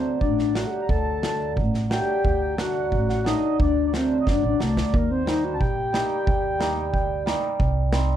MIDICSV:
0, 0, Header, 1, 6, 480
1, 0, Start_track
1, 0, Tempo, 675676
1, 632, Time_signature, 2, 2, 24, 8
1, 3029, Tempo, 665188
1, 5844, End_track
2, 0, Start_track
2, 0, Title_t, "Accordion"
2, 0, Program_c, 0, 21
2, 0, Note_on_c, 0, 72, 57
2, 143, Note_on_c, 0, 74, 61
2, 150, Note_off_c, 0, 72, 0
2, 386, Note_on_c, 0, 78, 67
2, 395, Note_off_c, 0, 74, 0
2, 578, Note_on_c, 0, 82, 64
2, 584, Note_off_c, 0, 78, 0
2, 631, Note_off_c, 0, 82, 0
2, 636, Note_on_c, 0, 81, 80
2, 1088, Note_off_c, 0, 81, 0
2, 1360, Note_on_c, 0, 79, 94
2, 1706, Note_off_c, 0, 79, 0
2, 1716, Note_on_c, 0, 79, 84
2, 1827, Note_off_c, 0, 79, 0
2, 1834, Note_on_c, 0, 78, 85
2, 2184, Note_off_c, 0, 78, 0
2, 2195, Note_on_c, 0, 78, 96
2, 2318, Note_off_c, 0, 78, 0
2, 2319, Note_on_c, 0, 75, 72
2, 2539, Note_off_c, 0, 75, 0
2, 2566, Note_on_c, 0, 74, 78
2, 2738, Note_off_c, 0, 74, 0
2, 2748, Note_on_c, 0, 74, 53
2, 2795, Note_on_c, 0, 72, 65
2, 2796, Note_off_c, 0, 74, 0
2, 2968, Note_off_c, 0, 72, 0
2, 2988, Note_on_c, 0, 75, 64
2, 3035, Note_off_c, 0, 75, 0
2, 3037, Note_on_c, 0, 74, 65
2, 3513, Note_on_c, 0, 70, 71
2, 3531, Note_off_c, 0, 74, 0
2, 3637, Note_off_c, 0, 70, 0
2, 3637, Note_on_c, 0, 72, 74
2, 3949, Note_on_c, 0, 81, 61
2, 3955, Note_off_c, 0, 72, 0
2, 3991, Note_on_c, 0, 79, 85
2, 3998, Note_off_c, 0, 81, 0
2, 4936, Note_off_c, 0, 79, 0
2, 4947, Note_on_c, 0, 79, 68
2, 5173, Note_off_c, 0, 79, 0
2, 5844, End_track
3, 0, Start_track
3, 0, Title_t, "Ocarina"
3, 0, Program_c, 1, 79
3, 0, Note_on_c, 1, 60, 73
3, 132, Note_off_c, 1, 60, 0
3, 152, Note_on_c, 1, 62, 73
3, 392, Note_on_c, 1, 66, 85
3, 403, Note_off_c, 1, 62, 0
3, 475, Note_on_c, 1, 69, 55
3, 485, Note_off_c, 1, 66, 0
3, 501, Note_on_c, 1, 67, 87
3, 512, Note_off_c, 1, 69, 0
3, 634, Note_on_c, 1, 69, 86
3, 644, Note_off_c, 1, 67, 0
3, 1115, Note_off_c, 1, 69, 0
3, 1357, Note_on_c, 1, 67, 109
3, 1808, Note_off_c, 1, 67, 0
3, 1849, Note_on_c, 1, 66, 104
3, 2322, Note_on_c, 1, 63, 85
3, 2333, Note_off_c, 1, 66, 0
3, 2562, Note_on_c, 1, 62, 87
3, 2573, Note_off_c, 1, 63, 0
3, 2796, Note_off_c, 1, 62, 0
3, 2809, Note_on_c, 1, 60, 80
3, 3023, Note_off_c, 1, 60, 0
3, 3048, Note_on_c, 1, 62, 75
3, 3152, Note_off_c, 1, 62, 0
3, 3171, Note_on_c, 1, 62, 75
3, 3277, Note_on_c, 1, 57, 77
3, 3288, Note_off_c, 1, 62, 0
3, 3513, Note_on_c, 1, 58, 82
3, 3524, Note_off_c, 1, 57, 0
3, 3637, Note_on_c, 1, 60, 83
3, 3648, Note_off_c, 1, 58, 0
3, 3748, Note_off_c, 1, 60, 0
3, 3752, Note_on_c, 1, 63, 92
3, 3882, Note_on_c, 1, 66, 81
3, 3893, Note_off_c, 1, 63, 0
3, 4000, Note_on_c, 1, 67, 81
3, 4011, Note_off_c, 1, 66, 0
3, 5196, Note_off_c, 1, 67, 0
3, 5844, End_track
4, 0, Start_track
4, 0, Title_t, "Hammered dulcimer"
4, 0, Program_c, 2, 15
4, 0, Note_on_c, 2, 54, 47
4, 376, Note_off_c, 2, 54, 0
4, 385, Note_on_c, 2, 54, 52
4, 389, Note_on_c, 2, 57, 50
4, 396, Note_on_c, 2, 62, 66
4, 511, Note_off_c, 2, 57, 0
4, 514, Note_off_c, 2, 62, 0
4, 858, Note_off_c, 2, 54, 0
4, 866, Note_on_c, 2, 54, 49
4, 872, Note_on_c, 2, 57, 40
4, 882, Note_on_c, 2, 62, 50
4, 993, Note_off_c, 2, 57, 0
4, 998, Note_off_c, 2, 62, 0
4, 1340, Note_off_c, 2, 54, 0
4, 1348, Note_on_c, 2, 54, 58
4, 1355, Note_on_c, 2, 57, 56
4, 1360, Note_on_c, 2, 62, 61
4, 1475, Note_off_c, 2, 57, 0
4, 1477, Note_off_c, 2, 62, 0
4, 1818, Note_off_c, 2, 54, 0
4, 1827, Note_on_c, 2, 54, 45
4, 1833, Note_on_c, 2, 57, 49
4, 1842, Note_on_c, 2, 62, 59
4, 1954, Note_off_c, 2, 57, 0
4, 1958, Note_off_c, 2, 62, 0
4, 2295, Note_off_c, 2, 54, 0
4, 2303, Note_on_c, 2, 54, 66
4, 2312, Note_on_c, 2, 57, 62
4, 2317, Note_on_c, 2, 62, 66
4, 2432, Note_off_c, 2, 57, 0
4, 2435, Note_off_c, 2, 62, 0
4, 2781, Note_off_c, 2, 54, 0
4, 2789, Note_on_c, 2, 54, 55
4, 2795, Note_on_c, 2, 57, 54
4, 2799, Note_on_c, 2, 62, 66
4, 2912, Note_off_c, 2, 57, 0
4, 2915, Note_off_c, 2, 62, 0
4, 3258, Note_off_c, 2, 54, 0
4, 3267, Note_on_c, 2, 54, 57
4, 3271, Note_on_c, 2, 57, 52
4, 3276, Note_on_c, 2, 62, 60
4, 3392, Note_off_c, 2, 57, 0
4, 3395, Note_off_c, 2, 62, 0
4, 3550, Note_off_c, 2, 54, 0
4, 3749, Note_on_c, 2, 55, 55
4, 3757, Note_on_c, 2, 58, 47
4, 3763, Note_on_c, 2, 63, 59
4, 3876, Note_off_c, 2, 58, 0
4, 3879, Note_off_c, 2, 63, 0
4, 4220, Note_off_c, 2, 55, 0
4, 4229, Note_on_c, 2, 55, 61
4, 4233, Note_on_c, 2, 58, 53
4, 4241, Note_on_c, 2, 63, 75
4, 4355, Note_off_c, 2, 58, 0
4, 4358, Note_off_c, 2, 63, 0
4, 4698, Note_off_c, 2, 55, 0
4, 4706, Note_on_c, 2, 55, 62
4, 4712, Note_on_c, 2, 58, 64
4, 4719, Note_on_c, 2, 63, 75
4, 4834, Note_off_c, 2, 58, 0
4, 4837, Note_off_c, 2, 63, 0
4, 5181, Note_off_c, 2, 55, 0
4, 5190, Note_on_c, 2, 55, 69
4, 5197, Note_on_c, 2, 58, 66
4, 5204, Note_on_c, 2, 63, 84
4, 5315, Note_off_c, 2, 58, 0
4, 5318, Note_off_c, 2, 63, 0
4, 5468, Note_off_c, 2, 55, 0
4, 5668, Note_on_c, 2, 55, 70
4, 5672, Note_on_c, 2, 60, 67
4, 5681, Note_on_c, 2, 63, 67
4, 5790, Note_off_c, 2, 60, 0
4, 5795, Note_off_c, 2, 63, 0
4, 5844, Note_off_c, 2, 55, 0
4, 5844, End_track
5, 0, Start_track
5, 0, Title_t, "Upright bass"
5, 0, Program_c, 3, 32
5, 0, Note_on_c, 3, 38, 75
5, 151, Note_on_c, 3, 33, 74
5, 162, Note_off_c, 3, 38, 0
5, 441, Note_off_c, 3, 33, 0
5, 633, Note_on_c, 3, 38, 82
5, 1110, Note_on_c, 3, 33, 80
5, 1121, Note_off_c, 3, 38, 0
5, 1400, Note_off_c, 3, 33, 0
5, 1594, Note_on_c, 3, 38, 69
5, 2073, Note_on_c, 3, 33, 75
5, 2084, Note_off_c, 3, 38, 0
5, 2360, Note_off_c, 3, 33, 0
5, 2554, Note_on_c, 3, 38, 76
5, 3031, Note_off_c, 3, 38, 0
5, 3034, Note_on_c, 3, 30, 78
5, 3141, Note_off_c, 3, 30, 0
5, 3151, Note_on_c, 3, 33, 76
5, 3260, Note_off_c, 3, 33, 0
5, 3271, Note_on_c, 3, 36, 76
5, 3380, Note_off_c, 3, 36, 0
5, 3392, Note_on_c, 3, 38, 83
5, 3501, Note_off_c, 3, 38, 0
5, 3517, Note_on_c, 3, 39, 89
5, 3998, Note_off_c, 3, 39, 0
5, 3998, Note_on_c, 3, 34, 78
5, 4285, Note_off_c, 3, 34, 0
5, 4477, Note_on_c, 3, 39, 76
5, 4953, Note_off_c, 3, 39, 0
5, 4953, Note_on_c, 3, 38, 78
5, 5240, Note_off_c, 3, 38, 0
5, 5436, Note_on_c, 3, 36, 89
5, 5844, Note_off_c, 3, 36, 0
5, 5844, End_track
6, 0, Start_track
6, 0, Title_t, "Drums"
6, 150, Note_on_c, 9, 36, 66
6, 221, Note_off_c, 9, 36, 0
6, 275, Note_on_c, 9, 38, 27
6, 346, Note_off_c, 9, 38, 0
6, 394, Note_on_c, 9, 38, 68
6, 465, Note_off_c, 9, 38, 0
6, 633, Note_on_c, 9, 36, 75
6, 704, Note_off_c, 9, 36, 0
6, 876, Note_on_c, 9, 38, 75
6, 947, Note_off_c, 9, 38, 0
6, 1115, Note_on_c, 9, 36, 68
6, 1186, Note_off_c, 9, 36, 0
6, 1237, Note_on_c, 9, 38, 28
6, 1308, Note_off_c, 9, 38, 0
6, 1357, Note_on_c, 9, 38, 72
6, 1428, Note_off_c, 9, 38, 0
6, 1596, Note_on_c, 9, 36, 75
6, 1667, Note_off_c, 9, 36, 0
6, 1836, Note_on_c, 9, 38, 70
6, 1907, Note_off_c, 9, 38, 0
6, 2075, Note_on_c, 9, 36, 64
6, 2146, Note_off_c, 9, 36, 0
6, 2197, Note_on_c, 9, 38, 26
6, 2268, Note_off_c, 9, 38, 0
6, 2319, Note_on_c, 9, 38, 65
6, 2390, Note_off_c, 9, 38, 0
6, 2555, Note_on_c, 9, 36, 85
6, 2626, Note_off_c, 9, 36, 0
6, 2797, Note_on_c, 9, 38, 62
6, 2869, Note_off_c, 9, 38, 0
6, 3032, Note_on_c, 9, 36, 66
6, 3035, Note_on_c, 9, 38, 44
6, 3104, Note_off_c, 9, 36, 0
6, 3107, Note_off_c, 9, 38, 0
6, 3275, Note_on_c, 9, 38, 54
6, 3347, Note_off_c, 9, 38, 0
6, 3397, Note_on_c, 9, 38, 61
6, 3469, Note_off_c, 9, 38, 0
6, 3515, Note_on_c, 9, 36, 94
6, 3588, Note_off_c, 9, 36, 0
6, 3757, Note_on_c, 9, 38, 66
6, 3829, Note_off_c, 9, 38, 0
6, 3998, Note_on_c, 9, 36, 66
6, 4070, Note_off_c, 9, 36, 0
6, 4238, Note_on_c, 9, 38, 63
6, 4311, Note_off_c, 9, 38, 0
6, 4478, Note_on_c, 9, 36, 94
6, 4550, Note_off_c, 9, 36, 0
6, 4719, Note_on_c, 9, 38, 70
6, 4791, Note_off_c, 9, 38, 0
6, 4957, Note_on_c, 9, 36, 63
6, 5029, Note_off_c, 9, 36, 0
6, 5199, Note_on_c, 9, 38, 61
6, 5271, Note_off_c, 9, 38, 0
6, 5435, Note_on_c, 9, 36, 86
6, 5507, Note_off_c, 9, 36, 0
6, 5671, Note_on_c, 9, 38, 83
6, 5743, Note_off_c, 9, 38, 0
6, 5844, End_track
0, 0, End_of_file